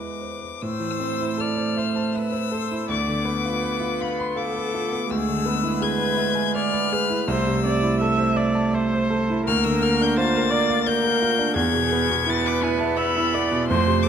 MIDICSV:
0, 0, Header, 1, 5, 480
1, 0, Start_track
1, 0, Key_signature, 0, "minor"
1, 0, Tempo, 836820
1, 362, Tempo, 772201
1, 363, Time_signature, 3, 2, 24, 8
1, 842, Tempo, 742574
1, 2762, Tempo, 727273
1, 6122, Tempo, 695249
1, 7562, Tempo, 712589
1, 9271, End_track
2, 0, Start_track
2, 0, Title_t, "Violin"
2, 0, Program_c, 0, 40
2, 0, Note_on_c, 0, 86, 84
2, 354, Note_on_c, 0, 88, 111
2, 363, Note_off_c, 0, 86, 0
2, 841, Note_on_c, 0, 89, 104
2, 851, Note_off_c, 0, 88, 0
2, 1326, Note_on_c, 0, 88, 109
2, 1336, Note_off_c, 0, 89, 0
2, 1807, Note_off_c, 0, 88, 0
2, 1811, Note_on_c, 0, 86, 113
2, 2528, Note_on_c, 0, 83, 96
2, 2538, Note_off_c, 0, 86, 0
2, 2647, Note_on_c, 0, 84, 91
2, 2657, Note_off_c, 0, 83, 0
2, 2762, Note_on_c, 0, 86, 105
2, 2772, Note_off_c, 0, 84, 0
2, 3245, Note_on_c, 0, 88, 127
2, 3255, Note_off_c, 0, 86, 0
2, 3716, Note_on_c, 0, 92, 115
2, 3726, Note_off_c, 0, 88, 0
2, 4201, Note_off_c, 0, 92, 0
2, 4204, Note_on_c, 0, 89, 123
2, 4683, Note_on_c, 0, 88, 105
2, 4693, Note_off_c, 0, 89, 0
2, 5399, Note_off_c, 0, 88, 0
2, 6126, Note_on_c, 0, 89, 127
2, 6246, Note_on_c, 0, 88, 120
2, 6257, Note_off_c, 0, 89, 0
2, 6370, Note_on_c, 0, 89, 127
2, 6380, Note_off_c, 0, 88, 0
2, 6508, Note_on_c, 0, 91, 117
2, 6518, Note_off_c, 0, 89, 0
2, 6616, Note_off_c, 0, 91, 0
2, 6620, Note_on_c, 0, 93, 127
2, 7083, Note_on_c, 0, 91, 124
2, 7094, Note_off_c, 0, 93, 0
2, 7562, Note_off_c, 0, 91, 0
2, 7566, Note_on_c, 0, 92, 127
2, 8065, Note_on_c, 0, 93, 119
2, 8075, Note_off_c, 0, 92, 0
2, 8177, Note_on_c, 0, 86, 115
2, 8187, Note_off_c, 0, 93, 0
2, 8287, Note_on_c, 0, 80, 109
2, 8297, Note_off_c, 0, 86, 0
2, 8400, Note_on_c, 0, 81, 109
2, 8410, Note_off_c, 0, 80, 0
2, 8516, Note_on_c, 0, 83, 125
2, 8526, Note_off_c, 0, 81, 0
2, 8989, Note_off_c, 0, 83, 0
2, 8993, Note_on_c, 0, 84, 124
2, 9232, Note_on_c, 0, 86, 106
2, 9242, Note_off_c, 0, 84, 0
2, 9271, Note_off_c, 0, 86, 0
2, 9271, End_track
3, 0, Start_track
3, 0, Title_t, "Viola"
3, 0, Program_c, 1, 41
3, 0, Note_on_c, 1, 71, 63
3, 220, Note_off_c, 1, 71, 0
3, 357, Note_on_c, 1, 72, 82
3, 844, Note_on_c, 1, 74, 80
3, 854, Note_off_c, 1, 72, 0
3, 1086, Note_on_c, 1, 72, 72
3, 1095, Note_off_c, 1, 74, 0
3, 1336, Note_on_c, 1, 71, 74
3, 1346, Note_off_c, 1, 72, 0
3, 1564, Note_on_c, 1, 72, 80
3, 1574, Note_off_c, 1, 71, 0
3, 1807, Note_off_c, 1, 72, 0
3, 1810, Note_on_c, 1, 74, 82
3, 2036, Note_on_c, 1, 71, 85
3, 2046, Note_off_c, 1, 74, 0
3, 2752, Note_on_c, 1, 69, 88
3, 2762, Note_off_c, 1, 71, 0
3, 3235, Note_off_c, 1, 69, 0
3, 3239, Note_on_c, 1, 68, 80
3, 3479, Note_on_c, 1, 71, 94
3, 3489, Note_off_c, 1, 68, 0
3, 4202, Note_on_c, 1, 74, 91
3, 4212, Note_off_c, 1, 71, 0
3, 4447, Note_on_c, 1, 71, 94
3, 4457, Note_off_c, 1, 74, 0
3, 4688, Note_off_c, 1, 71, 0
3, 4695, Note_on_c, 1, 72, 93
3, 4923, Note_off_c, 1, 72, 0
3, 4927, Note_on_c, 1, 74, 95
3, 5158, Note_off_c, 1, 74, 0
3, 5165, Note_on_c, 1, 76, 106
3, 5397, Note_on_c, 1, 74, 97
3, 5407, Note_off_c, 1, 76, 0
3, 5645, Note_on_c, 1, 72, 100
3, 5655, Note_off_c, 1, 74, 0
3, 6118, Note_off_c, 1, 72, 0
3, 6122, Note_on_c, 1, 70, 109
3, 6608, Note_on_c, 1, 72, 106
3, 6618, Note_off_c, 1, 70, 0
3, 6839, Note_on_c, 1, 74, 97
3, 6849, Note_off_c, 1, 72, 0
3, 7078, Note_off_c, 1, 74, 0
3, 7085, Note_on_c, 1, 70, 102
3, 7556, Note_on_c, 1, 68, 103
3, 7566, Note_off_c, 1, 70, 0
3, 8036, Note_off_c, 1, 68, 0
3, 8040, Note_on_c, 1, 71, 102
3, 8516, Note_on_c, 1, 76, 97
3, 8526, Note_off_c, 1, 71, 0
3, 8772, Note_on_c, 1, 74, 101
3, 8782, Note_off_c, 1, 76, 0
3, 9003, Note_off_c, 1, 74, 0
3, 9007, Note_on_c, 1, 72, 93
3, 9248, Note_on_c, 1, 69, 82
3, 9258, Note_off_c, 1, 72, 0
3, 9271, Note_off_c, 1, 69, 0
3, 9271, End_track
4, 0, Start_track
4, 0, Title_t, "Grand piano"
4, 0, Program_c, 2, 0
4, 0, Control_c, 2, 64, 127
4, 0, Note_on_c, 2, 40, 59
4, 0, Note_on_c, 2, 64, 45
4, 0, Note_on_c, 2, 69, 41
4, 0, Note_on_c, 2, 71, 42
4, 0, Note_on_c, 2, 72, 39
4, 70, Note_off_c, 2, 64, 0
4, 122, Note_off_c, 2, 72, 0
4, 122, Note_on_c, 2, 72, 37
4, 198, Note_off_c, 2, 71, 0
4, 243, Note_on_c, 2, 71, 43
4, 246, Note_off_c, 2, 72, 0
4, 334, Note_off_c, 2, 40, 0
4, 358, Note_on_c, 2, 45, 75
4, 359, Note_off_c, 2, 71, 0
4, 374, Control_c, 2, 64, 0
4, 378, Note_off_c, 2, 69, 0
4, 459, Control_c, 2, 64, 127
4, 464, Note_on_c, 2, 52, 54
4, 590, Note_on_c, 2, 60, 58
4, 664, Note_off_c, 2, 52, 0
4, 716, Note_on_c, 2, 64, 56
4, 789, Note_off_c, 2, 60, 0
4, 825, Note_on_c, 2, 69, 61
4, 915, Note_off_c, 2, 64, 0
4, 952, Note_on_c, 2, 72, 59
4, 1033, Note_off_c, 2, 69, 0
4, 1078, Note_on_c, 2, 76, 61
4, 1156, Note_off_c, 2, 72, 0
4, 1199, Note_on_c, 2, 81, 57
4, 1278, Note_off_c, 2, 76, 0
4, 1321, Note_on_c, 2, 76, 64
4, 1398, Note_off_c, 2, 81, 0
4, 1436, Note_on_c, 2, 72, 56
4, 1518, Note_off_c, 2, 76, 0
4, 1561, Note_on_c, 2, 69, 60
4, 1635, Note_off_c, 2, 72, 0
4, 1688, Note_on_c, 2, 64, 59
4, 1758, Note_off_c, 2, 69, 0
4, 1782, Note_off_c, 2, 45, 0
4, 1801, Note_on_c, 2, 38, 82
4, 1809, Note_off_c, 2, 64, 0
4, 1823, Control_c, 2, 64, 0
4, 1911, Control_c, 2, 64, 127
4, 1926, Note_on_c, 2, 50, 52
4, 2036, Note_on_c, 2, 59, 62
4, 2118, Note_off_c, 2, 50, 0
4, 2166, Note_on_c, 2, 65, 60
4, 2232, Note_off_c, 2, 59, 0
4, 2284, Note_on_c, 2, 71, 66
4, 2356, Note_off_c, 2, 65, 0
4, 2394, Note_on_c, 2, 65, 62
4, 2475, Note_off_c, 2, 71, 0
4, 2528, Note_on_c, 2, 77, 69
4, 2591, Note_off_c, 2, 65, 0
4, 2645, Note_on_c, 2, 83, 66
4, 2717, Note_off_c, 2, 77, 0
4, 2755, Note_on_c, 2, 77, 67
4, 2837, Note_off_c, 2, 83, 0
4, 2888, Note_on_c, 2, 71, 63
4, 2952, Note_off_c, 2, 77, 0
4, 3005, Note_on_c, 2, 65, 62
4, 3078, Note_off_c, 2, 71, 0
4, 3126, Note_on_c, 2, 59, 59
4, 3196, Note_off_c, 2, 65, 0
4, 3213, Note_off_c, 2, 38, 0
4, 3245, Note_off_c, 2, 59, 0
4, 3246, Note_on_c, 2, 38, 83
4, 3255, Control_c, 2, 64, 0
4, 3365, Note_on_c, 2, 50, 60
4, 3376, Control_c, 2, 64, 127
4, 3475, Note_on_c, 2, 59, 68
4, 3553, Note_off_c, 2, 50, 0
4, 3591, Note_on_c, 2, 64, 69
4, 3668, Note_off_c, 2, 59, 0
4, 3712, Note_on_c, 2, 68, 70
4, 3785, Note_off_c, 2, 64, 0
4, 3824, Note_on_c, 2, 71, 71
4, 3906, Note_off_c, 2, 68, 0
4, 3940, Note_on_c, 2, 76, 70
4, 4024, Note_off_c, 2, 71, 0
4, 4068, Note_on_c, 2, 80, 68
4, 4144, Note_off_c, 2, 76, 0
4, 4194, Note_on_c, 2, 76, 72
4, 4270, Note_off_c, 2, 80, 0
4, 4316, Note_on_c, 2, 71, 72
4, 4394, Note_off_c, 2, 76, 0
4, 4444, Note_on_c, 2, 68, 71
4, 4515, Note_off_c, 2, 71, 0
4, 4560, Note_on_c, 2, 64, 69
4, 4639, Note_off_c, 2, 68, 0
4, 4663, Note_off_c, 2, 38, 0
4, 4679, Note_on_c, 2, 36, 92
4, 4684, Note_off_c, 2, 64, 0
4, 4700, Control_c, 2, 64, 0
4, 4805, Note_on_c, 2, 48, 66
4, 4812, Control_c, 2, 64, 127
4, 4925, Note_on_c, 2, 60, 72
4, 4996, Note_off_c, 2, 48, 0
4, 5040, Note_on_c, 2, 64, 68
4, 5114, Note_off_c, 2, 60, 0
4, 5163, Note_on_c, 2, 69, 80
4, 5231, Note_off_c, 2, 64, 0
4, 5277, Note_on_c, 2, 72, 78
4, 5353, Note_off_c, 2, 69, 0
4, 5394, Note_on_c, 2, 76, 82
4, 5471, Note_off_c, 2, 72, 0
4, 5519, Note_on_c, 2, 81, 77
4, 5591, Note_off_c, 2, 76, 0
4, 5639, Note_on_c, 2, 76, 80
4, 5714, Note_off_c, 2, 81, 0
4, 5765, Note_on_c, 2, 72, 78
4, 5834, Note_off_c, 2, 76, 0
4, 5884, Note_on_c, 2, 69, 77
4, 5957, Note_off_c, 2, 72, 0
4, 6012, Note_on_c, 2, 64, 79
4, 6076, Note_off_c, 2, 69, 0
4, 6092, Note_off_c, 2, 36, 0
4, 6128, Note_off_c, 2, 64, 0
4, 6130, Note_on_c, 2, 38, 98
4, 6134, Control_c, 2, 64, 0
4, 6254, Note_on_c, 2, 50, 70
4, 6255, Control_c, 2, 64, 127
4, 6366, Note_on_c, 2, 58, 77
4, 6447, Note_off_c, 2, 50, 0
4, 6499, Note_on_c, 2, 62, 74
4, 6561, Note_off_c, 2, 58, 0
4, 6614, Note_on_c, 2, 65, 78
4, 6686, Note_off_c, 2, 62, 0
4, 6745, Note_on_c, 2, 70, 83
4, 6802, Note_off_c, 2, 65, 0
4, 6849, Note_on_c, 2, 74, 86
4, 6925, Note_off_c, 2, 70, 0
4, 6967, Note_on_c, 2, 77, 80
4, 7035, Note_off_c, 2, 74, 0
4, 7092, Note_on_c, 2, 74, 78
4, 7154, Note_off_c, 2, 77, 0
4, 7206, Note_on_c, 2, 70, 74
4, 7277, Note_off_c, 2, 74, 0
4, 7333, Note_on_c, 2, 65, 75
4, 7396, Note_off_c, 2, 70, 0
4, 7451, Note_on_c, 2, 62, 78
4, 7521, Note_off_c, 2, 65, 0
4, 7539, Note_off_c, 2, 38, 0
4, 7565, Note_on_c, 2, 40, 96
4, 7568, Note_off_c, 2, 62, 0
4, 7575, Control_c, 2, 64, 0
4, 7668, Control_c, 2, 64, 127
4, 7687, Note_on_c, 2, 47, 72
4, 7812, Note_on_c, 2, 59, 77
4, 7878, Note_off_c, 2, 47, 0
4, 7930, Note_on_c, 2, 47, 74
4, 8001, Note_off_c, 2, 59, 0
4, 8041, Note_on_c, 2, 64, 78
4, 8121, Note_off_c, 2, 47, 0
4, 8162, Note_on_c, 2, 71, 76
4, 8236, Note_off_c, 2, 64, 0
4, 8284, Note_on_c, 2, 64, 84
4, 8356, Note_off_c, 2, 71, 0
4, 8408, Note_on_c, 2, 76, 77
4, 8476, Note_off_c, 2, 64, 0
4, 8530, Note_on_c, 2, 71, 77
4, 8598, Note_off_c, 2, 76, 0
4, 8655, Note_on_c, 2, 64, 74
4, 8719, Note_off_c, 2, 71, 0
4, 8771, Note_on_c, 2, 59, 75
4, 8841, Note_off_c, 2, 64, 0
4, 8886, Note_on_c, 2, 47, 71
4, 8959, Note_off_c, 2, 59, 0
4, 8978, Note_off_c, 2, 40, 0
4, 9005, Note_off_c, 2, 47, 0
4, 9014, Note_on_c, 2, 41, 91
4, 9017, Control_c, 2, 64, 0
4, 9124, Control_c, 2, 64, 127
4, 9125, Note_on_c, 2, 48, 63
4, 9246, Note_on_c, 2, 57, 70
4, 9271, Note_off_c, 2, 41, 0
4, 9271, Note_off_c, 2, 48, 0
4, 9271, Note_off_c, 2, 57, 0
4, 9271, End_track
5, 0, Start_track
5, 0, Title_t, "Cello"
5, 0, Program_c, 3, 42
5, 0, Note_on_c, 3, 56, 71
5, 104, Note_off_c, 3, 56, 0
5, 356, Note_on_c, 3, 57, 70
5, 1781, Note_off_c, 3, 57, 0
5, 1809, Note_on_c, 3, 59, 72
5, 3216, Note_off_c, 3, 59, 0
5, 3242, Note_on_c, 3, 56, 84
5, 4661, Note_off_c, 3, 56, 0
5, 4693, Note_on_c, 3, 57, 87
5, 6099, Note_off_c, 3, 57, 0
5, 6124, Note_on_c, 3, 58, 97
5, 7557, Note_on_c, 3, 59, 92
5, 7568, Note_off_c, 3, 58, 0
5, 8997, Note_off_c, 3, 59, 0
5, 9001, Note_on_c, 3, 57, 93
5, 9271, Note_off_c, 3, 57, 0
5, 9271, End_track
0, 0, End_of_file